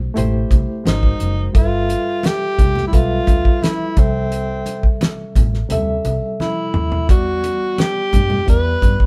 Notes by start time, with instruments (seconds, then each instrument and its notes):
Already playing: reed electric piano A3 E4 G4 C5, tenor saxophone C4
0.14 fingered electric bass A1, reed electric piano A3 E4 G4 C5, closed hi-hat, low conga
0.51 fingered electric bass C2, kick, closed hi-hat, muted conga
0.84 fingered electric bass G#1, reed electric piano G#3 F#4 A#4 C5, tenor saxophone D#4, snare, closed hi-hat, high conga
1.03 kick
1.20 fingered electric bass F#1, closed hi-hat, high conga
1.53 fingered electric bass G1, reed electric piano G3 F4 A4 A#4 E5, kick, closed hi-hat
1.58 tenor saxophone F4
1.62 reed electric piano B4
1.89 closed hi-hat, muted conga
2.23 tenor saxophone G4, snare, closed hi-hat, high conga
2.59 fingered electric bass C2, kick, closed hi-hat, muted conga, low conga
2.75 snare, low conga
2.87 reed electric piano G3, tenor saxophone E4
2.92 fingered electric bass B1, reed electric piano F4 A4 B4 E5, tenor saxophone F4, kick, closed hi-hat, muted conga
3.27 fingered electric bass D2, kick, closed hi-hat, muted conga
3.45 kick
3.62 tenor saxophone E4, snare, closed hi-hat, high conga
3.96 fingered electric bass C2, reed electric piano C3 G3 A4 E5, tenor saxophone C4, kick, closed hi-hat, high conga
4.32 closed hi-hat
4.66 closed hi-hat, muted conga
4.83 kick
5.01 snare, closed hi-hat, high conga
5.35 fingered electric bass A1, kick, closed hi-hat, muted conga, low conga
5.54 snare
5.69 fingered electric bass D2, reed electric piano C3 G3 A4 E5, closed hi-hat, muted conga, low conga
6.05 fingered electric bass C2, closed hi-hat, muted conga
6.40 tenor saxophone E4, snare, high conga
6.74 fingered electric bass D#2, mid tom, high conga
6.92 floor tom
7.07 fingered electric bass E2, reed electric piano E3 G3 B3 D5, tenor saxophone F#4, kick, closed hi-hat
7.44 closed hi-hat, muted conga
7.78 tenor saxophone G4, snare, closed hi-hat, high conga
8.13 fingered electric bass G2, kick, closed hi-hat, muted conga, low conga
8.30 low conga
8.46 fingered electric bass E2, reed electric piano E3 B3 G4 D5, tenor saxophone B4, kick, closed hi-hat, muted conga
8.82 fingered electric bass G2, kick, closed hi-hat, muted conga
9.00 kick